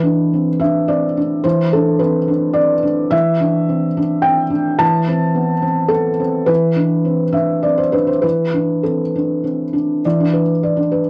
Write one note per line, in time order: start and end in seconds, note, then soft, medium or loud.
0.00 1.40 E3 soft
0.00 0.48 D4 soft
0.00 0.60 B4 medium
0.33 0.60 C4 soft
0.59 1.05 D4 soft
0.59 0.88 E5 medium
0.88 1.16 C4 soft
0.88 1.44 D5 medium
1.17 1.44 D4 soft
1.44 3.09 E3 medium
1.44 1.72 C5 medium
1.73 2.18 D4 soft
1.73 2.00 A4 medium
1.99 2.28 C4 soft
1.99 2.55 B4 medium
2.28 2.73 D4 soft
2.53 2.83 C4 soft
2.53 3.12 D5 medium
2.83 3.12 D4 soft
3.11 4.77 E3 soft
3.11 4.25 E5 medium
3.40 3.86 D4 soft
3.69 3.97 C4 soft
3.97 4.42 D4 soft
4.22 4.52 C4 soft
4.22 4.79 G5 medium
4.50 4.79 D4 soft
4.79 6.44 E3 medium
4.79 5.91 A5 medium
5.08 5.53 C4 soft
5.34 5.63 B3 soft
5.62 6.08 C4 soft
5.88 6.19 B3 soft
5.88 6.47 A4 medium
6.20 6.49 C4 soft
6.46 8.19 E3 soft
6.46 7.34 B4 medium
6.76 7.23 D4 soft
7.05 7.34 C4 soft
7.32 7.81 D4 soft
7.32 7.63 E5 medium
7.63 7.94 C4 soft
7.63 7.78 D5 soft
7.78 7.93 C5 soft
7.92 8.23 D4 soft
7.92 8.08 B4 medium
8.07 8.23 C5 soft
8.22 10.00 E3 soft
8.22 8.83 B4 medium
8.53 9.02 D4 soft
8.83 9.14 C4 soft
8.83 9.44 A4 soft
9.15 9.63 D4 soft
9.44 9.74 C4 soft
9.73 10.04 D4 soft
10.05 11.10 E3 soft
10.05 10.51 D5 soft
10.20 10.42 D4 soft
10.33 10.79 B4 soft
10.63 11.08 D5 soft
10.76 10.99 D4 soft
10.91 11.10 B4 soft